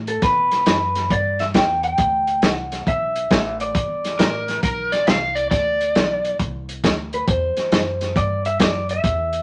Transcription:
Already playing: upright bass A2
0.07 clean electric guitar A4, closed hi-hat
0.22 clean electric guitar B4, kick, snare, closed hi-hat
0.51 snare, closed hi-hat
0.66 upright bass F#2, snare, closed hi-hat
0.95 snare, closed hi-hat
1.10 upright bass G2, clean electric guitar D5, kick, closed hi-hat
1.39 clean electric guitar E5, snare, closed hi-hat
1.54 upright bass E2, clean electric guitar G5, kick, snare, closed hi-hat
1.83 clean electric guitar G5, closed hi-hat
1.98 upright bass D2, kick, closed hi-hat
2.27 closed hi-hat
2.42 upright bass C2, snare, closed hi-hat
2.50 clean electric guitar F#5
2.72 snare, closed hi-hat
2.87 upright bass B1, clean electric guitar E5, kick, closed hi-hat
3.16 closed hi-hat
3.31 upright bass A1, kick, snare, closed hi-hat
3.60 clean electric guitar D5, closed hi-hat
3.75 upright bass G1, kick, closed hi-hat
4.04 snare, closed hi-hat
4.19 upright bass A1, electric slide guitar A#4, snare, closed hi-hat
4.48 snare, closed hi-hat
4.63 upright bass B1, electric slide guitar A#4, kick, closed hi-hat
4.92 electric slide guitar D5, snare, closed hi-hat
5.07 upright bass C2, electric slide guitar F5, snare, closed hi-hat
5.35 electric slide guitar D5, closed hi-hat
5.51 upright bass D2, electric slide guitar D5, kick, snare, closed hi-hat
5.81 closed hi-hat
5.95 upright bass B1, snare, closed hi-hat
6.25 closed hi-hat
6.39 upright bass C2, kick, closed hi-hat
6.69 closed hi-hat
6.84 upright bass D2, kick, snare, closed hi-hat
7.13 clean electric guitar B4, closed hi-hat
7.28 upright bass E2, clean electric guitar C5, kick, closed hi-hat
7.57 muted upright bass stroke, snare, closed hi-hat
7.72 upright bass F#2, snare, closed hi-hat
8.01 snare, closed hi-hat
8.16 upright bass G2, clean electric guitar D5, kick, closed hi-hat
8.45 clean electric guitar E5, closed hi-hat
8.60 upright bass F#2, clean electric guitar D5, kick, snare, closed hi-hat
8.89 clean electric guitar E5, closed hi-hat
9.04 upright bass E2, kick, closed hi-hat
9.33 closed hi-hat

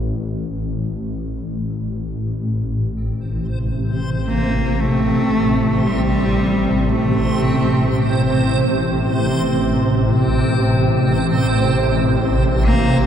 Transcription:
Already playing: synth drone A1 A2
2.67 synth drone A1 C3, synth texture C4 C5
4.28 cello A#3
4.80 cello A3
5.87 cello G3
6.90 cello A3
12.63 cello A#3

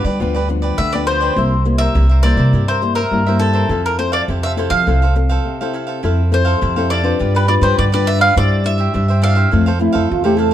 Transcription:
Already playing: nylon-string guitar D3
0.04 upright bass G3, cavaquinho G4 B4 D5
0.20 upright bass D2, nylon-string guitar G2 F3 B3 D4, cavaquinho F4 G4 B4 D5
0.34 cavaquinho G4 B4 D5
0.49 nylon-string guitar F3 B3 D4, muted cavaquinho stroke
0.62 cavaquinho G4 B4 D5
0.78 upright bass D2, nylon-string guitar D3, mandolin E5
0.93 nylon-string guitar F3 B3 D4, cavaquinho G4 B4 D5, mandolin D5
1.06 cavaquinho F4 G4 B4 D5, mandolin C5
1.20 cavaquinho G4 B4 D5
1.36 upright bass C2, nylon-string guitar C3 G3 A#3 E4, cavaquinho E4 A#4 C5 E5
1.65 nylon-string guitar G3 A#3 E4, muted cavaquinho stroke
1.78 cavaquinho A#4 C5 E5, mandolin E5
1.95 upright bass C2, nylon-string guitar G2, cavaquinho E4 A#4 C5 E5
2.09 cavaquinho A#4 C5 E5
2.23 nylon-string guitar G3 A#3 E4, cavaquinho E4 A#4 C5 E5, mandolin D5
2.37 upright bass C3, cavaquinho A#4 C5 E5
2.53 upright bass G2, nylon-string guitar C3, cavaquinho E4 A#4 C5 E5
2.68 cavaquinho A#4 C5 E5, mandolin C5
2.82 nylon-string guitar G3 A#3 E4, muted cavaquinho stroke
2.95 mandolin A#4, cavaquinho A#4 C5 E5
3.11 upright bass G2, nylon-string guitar G2 G3 A#3 E4
3.27 nylon-string guitar G3 A#3 E4, cavaquinho A#4 C5 E5
3.40 cavaquinho E4 A#4 C5 E5, mandolin A4
3.53 cavaquinho A#4 C5 E5
3.69 upright bass F2, nylon-string guitar F3 C4 E4 A4, cavaquinho E4 A4 C5 F5
3.86 mandolin A#4
3.98 nylon-string guitar C4 E4 A4, mandolin C5, muted cavaquinho stroke
4.12 cavaquinho A4 C5 F5, mandolin D5
4.28 upright bass F2, nylon-string guitar C3, cavaquinho E4 A4 C5 F5
4.43 cavaquinho A4 C5 F5, mandolin E5
4.56 nylon-string guitar C4 E4 A4, cavaquinho E4 A4 C5 F5
4.70 upright bass F3, cavaquinho A4 C5 F5, mandolin F5
4.86 upright bass C2, nylon-string guitar F3 C4 E4 A4, cavaquinho E4 A4 C5 F5
5.02 cavaquinho A4 C5 F5
5.15 nylon-string guitar C4 A4, muted cavaquinho stroke
5.29 cavaquinho A4 C5 F5
5.45 nylon-string guitar C3
5.61 nylon-string guitar C4 E4 A4, cavaquinho A4 C5 F5
5.73 cavaquinho E4 A4 C5 F5
5.87 cavaquinho A4 C5 F5
6.03 upright bass F2, nylon-string guitar F3 C4 E4 A4, cavaquinho E4 A4 C5 F5
6.31 nylon-string guitar C4 E4 A4, mandolin C5, muted cavaquinho stroke
6.45 cavaquinho A4 C5 F5
6.61 upright bass F2, nylon-string guitar C3, cavaquinho E4 A4 C5 F5
6.76 nylon-string guitar C4 E4 A4, cavaquinho A4 C5 F5
6.90 cavaquinho E4 A4 C5 F5, mandolin D5
7.03 nylon-string guitar D4 F4 B4, cavaquinho A4 C5 F5
7.19 upright bass G2, nylon-string guitar G3, cavaquinho F4 G4 B4 D5
7.35 cavaquinho G4 B4 D5, mandolin B4
7.48 nylon-string guitar D4 F4 B4, mandolin D5, muted cavaquinho stroke
7.61 upright bass G2, cavaquinho G4 B4 D5, mandolin C5
7.78 upright bass G2, nylon-string guitar D3, mandolin D5
7.92 nylon-string guitar D4 F4 B4, cavaquinho G4 B4 D5, mandolin D5
8.06 cavaquinho F4 G4 B4 D5, mandolin E5
8.19 cavaquinho G4 B4 D5, mandolin F5
8.36 upright bass G2, nylon-string guitar G3 D4 E4 C5, cavaquinho D4 G4 C5 E5, mandolin D5
8.64 nylon-string guitar D4 E4 C5, mandolin E5, muted cavaquinho stroke
8.78 cavaquinho G4 C5 E5
8.94 upright bass G2, nylon-string guitar G3, cavaquinho D4 G4 C5 E5
9.08 cavaquinho G4 C5 E5
9.22 cavaquinho D4 G4 C5 E5, nylon-string guitar D4 E4 C5, mandolin F5
9.35 cavaquinho G4 C5 E5
9.51 upright bass F2, nylon-string guitar F3 A3 C4 E4, cavaquinho E4 A4 C5 F5
9.66 cavaquinho A4 C5 F5
9.79 nylon-string guitar A3 C4 E4, trombone E4, muted cavaquinho stroke
9.93 upright bass F2, cavaquinho A4 C5 F5
10.10 upright bass E2, nylon-string guitar C3, trombone F4
10.24 nylon-string guitar A3 C4 E4, trombone G4, cavaquinho A4 C5 F5
10.37 cavaquinho E4 A4 C5 F5, trombone A4

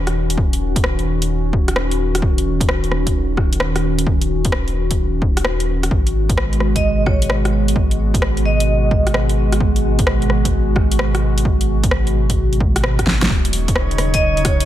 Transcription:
Already playing: sub bass D#1, ambient pad D#3 C#4 F#4
0.07 cross-stick, closed hi-hat
0.30 closed hi-hat
0.38 kick
0.53 closed hi-hat
0.76 kick, closed hi-hat
0.84 cross-stick
0.99 closed hi-hat
1.22 closed hi-hat
1.53 kick
1.68 cross-stick, closed hi-hat
1.76 cross-stick
1.91 closed hi-hat
2.15 cross-stick, closed hi-hat
2.22 kick
2.38 closed hi-hat
2.61 kick, closed hi-hat
2.69 cross-stick
2.84 closed hi-hat
2.92 cross-stick
3.07 kick, closed hi-hat
3.37 kick, cross-stick
3.53 closed hi-hat
3.60 cross-stick
3.76 cross-stick, closed hi-hat
3.99 closed hi-hat
4.07 kick
4.21 closed hi-hat
4.45 kick, closed hi-hat
4.52 cross-stick
4.68 closed hi-hat
4.91 kick, closed hi-hat
5.22 kick
5.37 cross-stick, closed hi-hat
5.45 cross-stick
5.60 closed hi-hat
5.83 cross-stick, closed hi-hat
5.91 sub bass G#1, ambient pad B2 G#3 F#4, kick
6.07 closed hi-hat
6.29 kick, closed hi-hat
6.38 cross-stick
6.53 closed hi-hat
6.60 cross-stick
6.76 vibraphone D#5, kick, closed hi-hat
7.06 vibraphone C#5, kick, cross-stick
7.22 closed hi-hat
7.30 cross-stick
7.45 cross-stick, closed hi-hat
7.68 closed hi-hat
7.76 kick
7.91 closed hi-hat
8.14 kick, closed hi-hat
8.22 cross-stick
8.37 closed hi-hat
8.45 vibraphone D#5
8.60 closed hi-hat
8.91 kick
9.07 cross-stick, closed hi-hat
9.14 cross-stick
9.29 closed hi-hat
9.52 cross-stick, closed hi-hat
9.60 kick
9.76 closed hi-hat
9.99 kick, closed hi-hat
10.07 cross-stick
10.22 closed hi-hat
10.30 cross-stick
10.45 kick, closed hi-hat
10.76 kick, cross-stick
10.91 closed hi-hat
10.99 cross-stick
11.15 cross-stick, closed hi-hat
11.38 closed hi-hat
11.45 kick
11.61 closed hi-hat
11.83 kick, closed hi-hat
11.91 cross-stick
12.07 closed hi-hat
12.30 kick, closed hi-hat
12.53 closed hi-hat
12.60 kick
12.76 cross-stick, closed hi-hat
12.84 cross-stick
12.99 kick, cross-stick, closed hi-hat
13.07 snare
13.22 snare, closed hi-hat
13.29 sub bass D#1, ambient pad C#3 F#3 D#4, synth texture C#5, kick
13.45 closed hi-hat
13.53 open hi-hat
13.68 kick, closed hi-hat
13.76 cross-stick
13.91 closed hi-hat
13.98 cross-stick, open hi-hat
14.14 vibraphone D#5, kick, closed hi-hat
14.37 closed hi-hat
14.45 vibraphone C#5, kick, cross-stick, open hi-hat
14.60 closed hi-hat

